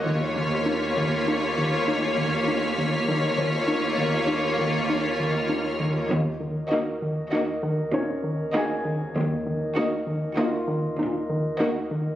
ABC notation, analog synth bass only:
X:1
M:5/4
L:1/8
Q:1/4=98
K:Ebm
V:1 name="Analog synth bass" clef=bass
E, E, E E, E E, E E, E E, | E, E, E E, E E, E E, E E, | E, E, E E, E E, E E, E E, | E, E, E E, E E, E E, E E, |]